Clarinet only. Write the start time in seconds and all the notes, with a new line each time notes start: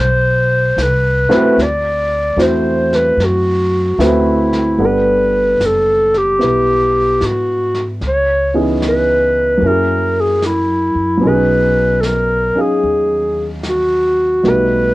0.00 C5
0.82 B4
1.62 D5
2.42 C5
2.96 B4
3.25 F#4
4.05 E4
4.85 B4
5.66 A4
6.17 G4
7.25 F#4
8.08 C#5
8.88 B4
9.67 A#4
10.20 G#4
10.46 E4
11.28 B4
12.01 A4
12.05 A#4
12.61 G#4
13.69 F#4
14.49 B4